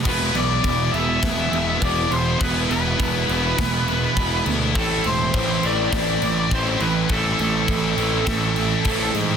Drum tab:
CC |xxxxxxxx|xxxxxxxx|xxxxxxxx|xxxxxxxx|
SD |----o---|----o---|----o---|----o---|
BD |o-o-o-o-|o-o-o-o-|o-o-o-o-|o-o-o-o-|